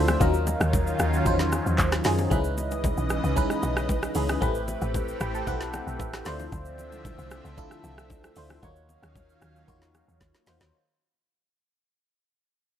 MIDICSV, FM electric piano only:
0, 0, Header, 1, 2, 480
1, 0, Start_track
1, 0, Tempo, 526316
1, 189, Time_signature, 4, 2, 24, 8
1, 11672, End_track
2, 0, Start_track
2, 0, Title_t, "FM electric piano"
2, 0, Program_c, 0, 5
2, 0, Control_c, 0, 64, 127
2, 0, Note_on_c, 0, 57, 82
2, 0, Note_on_c, 0, 62, 74
2, 0, Note_on_c, 0, 64, 78
2, 0, Note_on_c, 0, 65, 75
2, 0, Note_on_c, 0, 72, 90
2, 139, Note_off_c, 0, 57, 0
2, 141, Note_off_c, 0, 62, 0
2, 143, Note_off_c, 0, 64, 0
2, 145, Note_off_c, 0, 65, 0
2, 148, Note_off_c, 0, 72, 0
2, 179, Note_on_c, 0, 54, 88
2, 183, Note_on_c, 0, 61, 79
2, 187, Note_on_c, 0, 63, 81
2, 191, Note_on_c, 0, 65, 83
2, 195, Note_on_c, 0, 70, 101
2, 201, Control_c, 0, 64, 0
2, 343, Control_c, 0, 64, 127
2, 954, Note_off_c, 0, 54, 0
2, 956, Note_off_c, 0, 61, 0
2, 958, Note_off_c, 0, 63, 0
2, 960, Note_off_c, 0, 65, 0
2, 962, Note_off_c, 0, 70, 0
2, 1140, Note_on_c, 0, 54, 87
2, 1146, Note_on_c, 0, 61, 80
2, 1149, Note_on_c, 0, 63, 84
2, 1152, Note_on_c, 0, 65, 80
2, 1157, Note_on_c, 0, 72, 99
2, 1724, Note_off_c, 0, 54, 0
2, 1727, Note_off_c, 0, 61, 0
2, 1729, Note_off_c, 0, 63, 0
2, 1731, Note_off_c, 0, 65, 0
2, 1733, Note_off_c, 0, 72, 0
2, 1862, Note_on_c, 0, 54, 78
2, 1866, Note_on_c, 0, 61, 74
2, 1870, Note_on_c, 0, 63, 74
2, 1874, Note_on_c, 0, 65, 77
2, 1878, Note_on_c, 0, 68, 94
2, 2059, Note_off_c, 0, 54, 0
2, 2061, Note_off_c, 0, 61, 0
2, 2063, Note_off_c, 0, 63, 0
2, 2065, Note_off_c, 0, 65, 0
2, 2067, Note_off_c, 0, 68, 0
2, 2099, Note_on_c, 0, 56, 90
2, 2104, Note_on_c, 0, 61, 79
2, 2108, Note_on_c, 0, 63, 82
2, 2113, Note_on_c, 0, 64, 81
2, 2117, Note_on_c, 0, 71, 97
2, 2120, Control_c, 0, 64, 0
2, 2282, Control_c, 0, 64, 127
2, 2874, Note_off_c, 0, 56, 0
2, 2877, Note_off_c, 0, 61, 0
2, 2879, Note_off_c, 0, 63, 0
2, 2881, Note_off_c, 0, 64, 0
2, 2883, Note_off_c, 0, 71, 0
2, 3060, Note_on_c, 0, 56, 92
2, 3065, Note_on_c, 0, 61, 87
2, 3069, Note_on_c, 0, 63, 83
2, 3073, Note_on_c, 0, 64, 81
2, 3078, Note_on_c, 0, 71, 101
2, 3645, Note_off_c, 0, 56, 0
2, 3647, Note_off_c, 0, 61, 0
2, 3649, Note_off_c, 0, 63, 0
2, 3651, Note_off_c, 0, 64, 0
2, 3653, Note_off_c, 0, 71, 0
2, 3782, Note_on_c, 0, 56, 83
2, 3786, Note_on_c, 0, 61, 73
2, 3790, Note_on_c, 0, 63, 75
2, 3793, Note_on_c, 0, 64, 75
2, 3799, Note_on_c, 0, 68, 89
2, 3979, Note_off_c, 0, 56, 0
2, 3981, Note_off_c, 0, 61, 0
2, 3983, Note_off_c, 0, 63, 0
2, 3985, Note_off_c, 0, 64, 0
2, 3988, Note_off_c, 0, 68, 0
2, 4018, Note_on_c, 0, 57, 93
2, 4023, Note_on_c, 0, 60, 82
2, 4027, Note_on_c, 0, 64, 84
2, 4030, Note_on_c, 0, 67, 81
2, 4034, Note_on_c, 0, 71, 99
2, 4039, Control_c, 0, 64, 0
2, 4183, Control_c, 0, 64, 127
2, 4751, Note_on_c, 0, 83, 71
2, 4793, Note_off_c, 0, 57, 0
2, 4796, Note_off_c, 0, 60, 0
2, 4798, Note_off_c, 0, 64, 0
2, 4799, Note_off_c, 0, 67, 0
2, 4802, Note_off_c, 0, 71, 0
2, 4866, Note_off_c, 0, 83, 0
2, 4878, Note_on_c, 0, 81, 77
2, 4983, Note_off_c, 0, 81, 0
2, 4983, Note_on_c, 0, 57, 92
2, 4988, Note_on_c, 0, 60, 84
2, 4991, Note_on_c, 0, 64, 81
2, 4992, Note_on_c, 0, 78, 84
2, 4997, Note_on_c, 0, 67, 85
2, 5000, Note_on_c, 0, 71, 97
2, 5214, Note_off_c, 0, 78, 0
2, 5231, Note_on_c, 0, 79, 81
2, 5453, Note_off_c, 0, 79, 0
2, 5472, Note_on_c, 0, 76, 75
2, 5566, Note_off_c, 0, 57, 0
2, 5568, Note_off_c, 0, 60, 0
2, 5570, Note_off_c, 0, 64, 0
2, 5573, Note_off_c, 0, 67, 0
2, 5575, Note_off_c, 0, 71, 0
2, 5694, Note_off_c, 0, 76, 0
2, 5700, Note_on_c, 0, 57, 94
2, 5705, Note_on_c, 0, 62, 86
2, 5709, Note_on_c, 0, 64, 90
2, 5709, Note_on_c, 0, 74, 78
2, 5714, Note_on_c, 0, 65, 87
2, 5718, Note_on_c, 0, 72, 106
2, 5722, Control_c, 0, 64, 0
2, 5875, Control_c, 0, 64, 127
2, 5932, Note_off_c, 0, 74, 0
2, 6475, Note_off_c, 0, 57, 0
2, 6477, Note_off_c, 0, 62, 0
2, 6479, Note_off_c, 0, 64, 0
2, 6481, Note_off_c, 0, 65, 0
2, 6483, Note_off_c, 0, 72, 0
2, 6902, Note_on_c, 0, 57, 89
2, 6906, Note_on_c, 0, 62, 82
2, 6911, Note_on_c, 0, 64, 88
2, 6915, Note_on_c, 0, 65, 82
2, 6919, Note_on_c, 0, 69, 101
2, 7486, Note_off_c, 0, 57, 0
2, 7488, Note_off_c, 0, 62, 0
2, 7490, Note_off_c, 0, 64, 0
2, 7492, Note_off_c, 0, 65, 0
2, 7494, Note_off_c, 0, 69, 0
2, 7622, Note_on_c, 0, 57, 85
2, 7627, Note_on_c, 0, 62, 77
2, 7632, Note_on_c, 0, 64, 76
2, 7637, Note_on_c, 0, 65, 73
2, 7641, Note_on_c, 0, 72, 92
2, 7819, Note_off_c, 0, 57, 0
2, 7822, Note_off_c, 0, 62, 0
2, 7824, Note_off_c, 0, 64, 0
2, 7827, Note_off_c, 0, 65, 0
2, 7829, Note_off_c, 0, 72, 0
2, 7864, Note_on_c, 0, 58, 92
2, 7868, Note_on_c, 0, 63, 82
2, 7873, Note_on_c, 0, 65, 86
2, 7876, Note_on_c, 0, 66, 87
2, 7881, Control_c, 0, 64, 0
2, 7881, Note_on_c, 0, 73, 101
2, 8047, Control_c, 0, 64, 127
2, 8636, Note_off_c, 0, 58, 0
2, 8638, Note_off_c, 0, 63, 0
2, 8641, Note_off_c, 0, 65, 0
2, 8642, Note_off_c, 0, 66, 0
2, 8645, Note_off_c, 0, 73, 0
2, 8824, Note_on_c, 0, 58, 90
2, 8828, Note_on_c, 0, 63, 84
2, 8832, Note_on_c, 0, 65, 83
2, 8836, Note_on_c, 0, 66, 84
2, 8841, Note_on_c, 0, 73, 100
2, 9406, Note_off_c, 0, 58, 0
2, 9408, Note_off_c, 0, 63, 0
2, 9410, Note_off_c, 0, 65, 0
2, 9412, Note_off_c, 0, 66, 0
2, 9415, Note_off_c, 0, 73, 0
2, 9545, Note_on_c, 0, 58, 78
2, 9550, Note_on_c, 0, 63, 74
2, 9555, Note_on_c, 0, 65, 71
2, 9558, Note_on_c, 0, 66, 77
2, 9561, Note_on_c, 0, 72, 93
2, 9741, Note_off_c, 0, 58, 0
2, 9743, Note_off_c, 0, 63, 0
2, 9746, Note_off_c, 0, 65, 0
2, 9747, Note_off_c, 0, 66, 0
2, 9749, Note_off_c, 0, 72, 0
2, 9801, Control_c, 0, 64, 0
2, 11672, End_track
0, 0, End_of_file